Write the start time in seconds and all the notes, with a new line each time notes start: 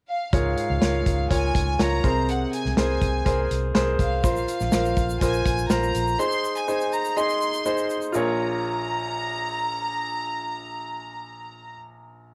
0.09 F5
0.33 C#2 G#2 F4 A#4 C#5 F5, kick, closed hi-hat
0.57 closed hi-hat
0.70 C#2
0.81 C#2 F4 A#4 C#5, snare, closed hi-hat
1.06 C#2, kick, closed hi-hat
1.30 C#2 F4 A#4 C#5 G#5, kick, closed hi-hat
1.55 C#2, kick, closed hi-hat
1.79 C#2 F4 A#4 C#5 A#5, snare, closed hi-hat
2.04 C2 C3 G#4 A#4 C5, kick, closed hi-hat
2.28 F#5, closed hi-hat
2.53 G#5, closed hi-hat
2.65 C2, snare
2.77 C2 G#4 A#4 C5 G#5, snare, closed hi-hat
3.01 C2, kick, closed hi-hat
3.25 C2 G#4 A#4 C5, kick, closed hi-hat
3.51 C2, closed hi-hat
3.74 C2 G#4 A#4 C5, snare, closed hi-hat
3.99 C2 F5, kick, closed hi-hat
4.24 A#1 F4 A#4 C5 F5, kick, closed hi-hat, shaker
4.36 shaker
4.48 closed hi-hat, shaker
4.60 A#1, snare, shaker
4.72 A#1 F4 A#4 C5, snare, closed hi-hat, shaker
4.85 shaker
4.96 A#1, kick, closed hi-hat, shaker
5.10 shaker
5.21 A#1 F4 A#4 C5 G#5, kick, closed hi-hat, shaker
5.34 shaker
5.46 A#1, kick, closed hi-hat, shaker
5.58 shaker
5.70 A#1 F4 A#4 C5 A#5, snare, closed hi-hat, shaker
5.83 shaker
5.95 A#1, closed hi-hat, shaker
6.07 shaker
6.19 D#4 G#4 C5 C6, shaker
6.31 shaker
6.45 shaker
6.56 G#5, shaker
6.68 D#4 G#4 C5, shaker
6.81 shaker
6.93 A#5, shaker
7.05 shaker
7.17 D#4 G#4 D#5 C6, shaker
7.29 shaker
7.41 shaker
7.54 shaker
7.65 D#4 G#4 C5, shaker
7.78 shaker
7.90 shaker
8.02 shaker
8.12 A#1 F4 A#4 A#5, shaker
8.16 C#5